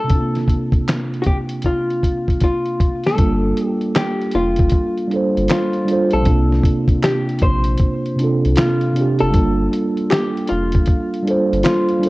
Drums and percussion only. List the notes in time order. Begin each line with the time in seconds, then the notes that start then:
0.10 kick, closed hi-hat
0.35 snare, closed hi-hat
0.48 kick, closed hi-hat
0.72 kick, closed hi-hat
0.88 snare, clap, closed hi-hat
1.14 closed hi-hat
1.24 kick, closed hi-hat
1.49 closed hi-hat
1.62 kick, closed hi-hat
1.90 closed hi-hat
2.03 kick, closed hi-hat
2.28 kick, closed hi-hat
2.40 kick, closed hi-hat
2.65 closed hi-hat
2.80 kick, closed hi-hat
3.03 snare, closed hi-hat
3.18 kick, closed hi-hat
3.57 closed hi-hat
3.81 closed hi-hat
3.95 finger snap, snare, clap, closed hi-hat
4.22 closed hi-hat
4.31 closed hi-hat
4.56 kick, closed hi-hat
4.69 kick, closed hi-hat
4.97 closed hi-hat
5.11 closed hi-hat
5.37 closed hi-hat
5.48 finger snap, snare, clap, closed hi-hat
5.73 closed hi-hat
5.88 closed hi-hat
6.11 closed hi-hat
6.26 kick, closed hi-hat
6.53 snare
6.64 kick, closed hi-hat
6.88 kick, closed hi-hat
7.03 finger snap, snare, clap, closed hi-hat
7.29 closed hi-hat
7.39 kick, closed hi-hat
7.64 closed hi-hat
7.78 kick, closed hi-hat
8.06 closed hi-hat
8.19 closed hi-hat
8.45 closed hi-hat
8.56 finger snap, snare, clap, closed hi-hat
8.81 closed hi-hat
8.96 closed hi-hat
9.19 closed hi-hat
9.33 kick, closed hi-hat
9.73 closed hi-hat
9.97 closed hi-hat
10.10 finger snap, snare, clap, closed hi-hat
10.37 closed hi-hat
10.47 closed hi-hat
10.72 kick, closed hi-hat
10.86 kick, closed hi-hat
11.14 closed hi-hat
11.27 closed hi-hat
11.53 closed hi-hat
11.63 finger snap, snare, clap, closed hi-hat
11.89 closed hi-hat
12.03 closed hi-hat